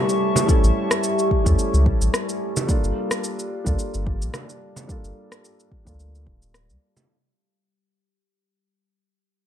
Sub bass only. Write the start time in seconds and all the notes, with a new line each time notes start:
0.64 A1
1.46 E2
1.74 C#2
2.01 A1
2.84 G1
3.66 D2
3.94 G1
4.22 A#1
5.04 G1
5.86 D2
6.27 D1
6.69 C#2